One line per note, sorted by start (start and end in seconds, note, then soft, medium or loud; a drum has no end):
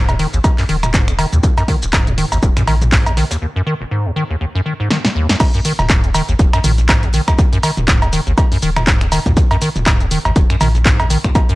0.00 0.26 D#1 loud
0.00 0.10 G#2 medium
0.09 0.15 D#2 medium
0.09 closed hi-hat medium
0.09 mid tom medium
0.09 cowbell medium
0.09 shaker soft
0.19 0.27 D#3 loud
0.19 closed hi-hat medium
0.19 open hi-hat loud
0.34 0.40 G#1 loud
0.34 0.39 D#2 medium
0.34 shaker medium
0.44 0.49 D#2 medium
0.44 kick loud
0.44 closed hi-hat medium
0.44 cowbell medium
0.44 shaker medium
0.58 0.64 F#2 loud
0.58 clap soft
0.58 open hi-hat medium
0.58 shaker soft
0.69 1.25 D#1 loud
0.69 0.77 D#3 loud
0.69 closed hi-hat medium
0.69 open hi-hat loud
0.83 0.87 D#1 medium
0.83 finger snap medium
0.83 closed hi-hat soft
0.83 mid tom medium
0.83 cowbell medium
0.83 shaker medium
0.94 1.09 G#2 medium
0.94 kick loud
0.94 snare loud
0.94 clap loud
0.94 closed hi-hat medium
0.94 shaker medium
1.08 1.14 D#2 medium
1.08 finger snap medium
1.08 closed hi-hat medium
1.08 shaker soft
1.19 1.26 D#3 loud
1.19 closed hi-hat medium
1.19 open hi-hat loud
1.19 cowbell medium
1.32 1.39 D#2 medium
1.32 1.40 D#2 medium
1.32 closed hi-hat soft
1.32 mid tom medium
1.32 shaker medium
1.43 1.48 D#2 medium
1.43 kick loud
1.43 closed hi-hat medium
1.43 shaker medium
1.57 1.63 F#2 loud
1.57 closed hi-hat soft
1.57 closed hi-hat medium
1.57 cowbell medium
1.57 shaker soft
1.68 1.76 D#3 loud
1.68 kick medium
1.68 closed hi-hat medium
1.68 open hi-hat loud
1.82 1.86 D#1 medium
1.82 2.24 D#1 loud
1.82 closed hi-hat soft
1.82 shaker medium
1.93 2.09 G#2 medium
1.93 finger snap medium
1.93 kick loud
1.93 snare loud
1.93 clap loud
1.93 closed hi-hat medium
1.93 cowbell medium
1.93 shaker medium
2.07 2.13 D#2 medium
2.07 closed hi-hat medium
2.07 mid tom medium
2.07 shaker soft
2.18 2.26 D#3 loud
2.18 closed hi-hat medium
2.18 open hi-hat loud
2.32 2.39 G#1 loud
2.32 2.38 D#2 medium
2.32 closed hi-hat soft
2.32 cowbell medium
2.32 shaker medium
2.43 2.52 D#1 medium
2.43 2.47 D#2 medium
2.43 kick loud
2.43 closed hi-hat medium
2.43 shaker medium
2.56 2.63 F#2 loud
2.56 finger snap medium
2.56 closed hi-hat medium
2.56 mid tom medium
2.56 shaker soft
2.67 3.23 A#1 medium
2.67 2.75 D#3 loud
2.67 closed hi-hat soft
2.67 open hi-hat loud
2.67 cowbell medium
2.81 2.85 D#1 medium
2.81 closed hi-hat soft
2.81 closed hi-hat medium
2.81 mid tom medium
2.81 shaker medium
2.92 3.08 G#2 medium
2.92 kick loud
2.92 snare loud
2.92 clap loud
2.92 closed hi-hat medium
2.92 open hi-hat medium
2.92 shaker medium
3.06 3.12 D#2 medium
3.06 closed hi-hat medium
3.06 cowbell medium
3.06 shaker soft
3.17 3.25 D#3 loud
3.17 snare medium
3.17 closed hi-hat medium
3.17 open hi-hat loud
3.31 3.37 D#2 medium
3.31 snare medium
3.31 closed hi-hat medium
3.31 closed hi-hat soft
3.31 shaker medium
3.42 3.46 D#2 medium
3.56 3.62 F#2 loud
3.67 3.74 D#3 loud
3.81 3.84 D#1 medium
3.91 4.07 G#2 medium
4.05 4.11 D#2 medium
4.16 4.24 D#3 loud
4.30 4.36 D#2 medium
4.41 4.46 D#2 medium
4.55 4.61 F#2 loud
4.66 4.74 D#3 medium
4.80 4.89 G#2 medium
4.90 4.98 D#3 medium
4.90 snare medium
5.05 5.08 A#2 medium
5.05 snare medium
5.15 5.27 D#2 loud
5.29 5.35 F#2 medium
5.29 snare medium
5.40 5.45 D#2 medium
5.40 kick loud
5.40 closed hi-hat medium
5.40 crash loud
5.40 cowbell medium
5.40 shaker soft
5.54 5.60 F#2 loud
5.54 closed hi-hat soft
5.54 closed hi-hat medium
5.54 shaker soft
5.65 5.73 D#3 loud
5.65 closed hi-hat medium
5.65 open hi-hat loud
5.65 shaker medium
5.79 6.21 D#1 loud
5.79 5.83 D#1 medium
5.79 closed hi-hat soft
5.79 mid tom loud
5.79 cowbell medium
5.79 shaker soft
5.89 6.05 G#2 medium
5.89 finger snap medium
5.89 kick loud
5.89 snare loud
5.89 clap loud
5.89 closed hi-hat medium
5.89 shaker soft
6.04 6.10 D#2 medium
6.04 closed hi-hat medium
6.04 shaker soft
6.14 6.22 D#3 loud
6.14 closed hi-hat medium
6.14 open hi-hat loud
6.14 cowbell medium
6.14 shaker medium
6.29 6.36 G#1 loud
6.29 6.35 D#2 medium
6.29 closed hi-hat soft
6.29 shaker soft
6.39 6.48 D#1 medium
6.39 6.44 D#2 medium
6.39 kick loud
6.39 closed hi-hat medium
6.39 shaker soft
6.53 6.59 F#2 loud
6.53 finger snap medium
6.53 closed hi-hat medium
6.53 cowbell medium
6.53 shaker soft
6.64 7.20 A#1 medium
6.64 6.72 D#3 loud
6.64 closed hi-hat medium
6.64 mid tom loud
6.64 open hi-hat loud
6.64 shaker medium
6.78 6.82 D#1 medium
6.78 closed hi-hat soft
6.78 shaker soft
6.88 7.05 G#2 medium
6.88 kick loud
6.88 snare loud
6.88 clap loud
6.88 closed hi-hat medium
6.88 cowbell medium
6.88 shaker soft
7.03 7.09 D#2 medium
7.03 closed hi-hat medium
7.03 shaker soft
7.13 7.21 D#3 loud
7.13 closed hi-hat medium
7.13 open hi-hat loud
7.13 shaker medium
7.28 7.34 D#2 medium
7.28 finger snap medium
7.28 kick medium
7.28 closed hi-hat soft
7.28 cowbell medium
7.28 shaker soft
7.38 7.43 D#2 medium
7.38 kick loud
7.38 closed hi-hat medium
7.38 shaker soft
7.53 7.58 F#2 loud
7.53 closed hi-hat medium
7.53 closed hi-hat soft
7.53 shaker soft
7.63 7.71 D#3 loud
7.63 closed hi-hat medium
7.63 open hi-hat loud
7.63 cowbell medium
7.63 shaker medium
7.77 7.81 D#1 medium
7.77 8.19 D#1 loud
7.77 closed hi-hat soft
7.77 mid tom loud
7.77 shaker soft
7.88 8.04 G#2 medium
7.88 finger snap medium
7.88 kick loud
7.88 snare loud
7.88 clap loud
7.88 closed hi-hat medium
7.88 shaker soft
8.02 8.08 D#2 medium
8.02 closed hi-hat medium
8.02 cowbell medium
8.02 shaker soft
8.13 8.21 D#3 loud
8.13 closed hi-hat medium
8.13 open hi-hat loud
8.13 shaker medium
8.27 8.34 G#1 loud
8.27 8.33 D#2 medium
8.27 closed hi-hat soft
8.27 shaker soft
8.38 8.42 D#2 medium
8.38 kick loud
8.38 closed hi-hat medium
8.38 cowbell medium
8.38 shaker soft
8.52 8.58 F#2 loud
8.52 open hi-hat medium
8.52 shaker soft
8.62 9.18 D#1 loud
8.62 8.70 D#3 loud
8.62 closed hi-hat medium
8.62 open hi-hat loud
8.62 shaker medium
8.77 8.80 D#1 medium
8.77 finger snap medium
8.77 closed hi-hat soft
8.77 mid tom loud
8.77 cowbell medium
8.77 shaker soft
8.87 9.03 G#2 medium
8.87 kick loud
8.87 snare loud
8.87 clap loud
8.87 closed hi-hat medium
8.87 shaker soft
9.01 9.07 D#2 medium
9.01 finger snap medium
9.01 closed hi-hat medium
9.01 shaker soft
9.12 9.20 D#3 loud
9.12 closed hi-hat medium
9.12 open hi-hat loud
9.12 cowbell medium
9.12 shaker medium
9.26 9.33 D#2 medium
9.26 9.32 D#2 medium
9.26 kick medium
9.26 closed hi-hat soft
9.26 mid tom medium
9.26 shaker soft
9.37 9.42 D#2 medium
9.37 kick loud
9.37 closed hi-hat medium
9.37 shaker soft
9.51 9.57 F#2 loud
9.51 closed hi-hat medium
9.51 closed hi-hat soft
9.51 cowbell medium
9.51 shaker soft
9.62 9.69 D#3 loud
9.62 closed hi-hat medium
9.62 open hi-hat loud
9.62 shaker medium
9.76 10.17 D#1 loud
9.76 9.79 D#1 medium
9.76 closed hi-hat soft
9.76 mid tom medium
9.76 shaker soft
9.86 10.02 G#2 medium
9.86 finger snap medium
9.86 kick loud
9.86 snare loud
9.86 clap loud
9.86 closed hi-hat medium
9.86 cowbell medium
9.86 shaker soft
10.01 10.06 D#2 medium
10.01 closed hi-hat medium
10.01 shaker soft
10.11 10.19 D#3 loud
10.11 closed hi-hat medium
10.11 open hi-hat loud
10.11 shaker medium
10.25 10.32 G#1 loud
10.25 10.31 D#2 medium
10.25 closed hi-hat soft
10.25 cowbell medium
10.25 shaker soft
10.36 10.45 D#1 medium
10.36 10.41 D#2 medium
10.36 kick loud
10.36 closed hi-hat medium
10.36 shaker soft
10.50 10.56 F#2 loud
10.50 finger snap medium
10.50 closed hi-hat medium
10.50 shaker soft
10.61 11.16 A#1 medium
10.61 10.69 D#3 loud
10.61 closed hi-hat medium
10.61 mid tom loud
10.61 open hi-hat loud
10.61 cowbell medium
10.61 shaker medium
10.75 10.78 D#1 medium
10.75 closed hi-hat soft
10.75 shaker soft
10.85 11.01 G#2 medium
10.85 kick loud
10.85 snare loud
10.85 clap loud
10.85 closed hi-hat medium
10.85 shaker soft
11.00 11.06 D#2 medium
11.00 closed hi-hat medium
11.00 cowbell medium
11.00 shaker soft
11.10 11.18 D#3 loud
11.10 closed hi-hat medium
11.10 open hi-hat loud
11.10 shaker medium
11.24 11.30 D#2 medium
11.24 finger snap medium
11.24 kick medium
11.24 closed hi-hat soft
11.24 shaker soft
11.35 11.40 D#2 medium
11.35 kick loud
11.35 closed hi-hat medium
11.35 cowbell medium
11.35 shaker soft
11.49 11.55 F#2 loud
11.49 closed hi-hat soft
11.49 closed hi-hat medium
11.49 shaker soft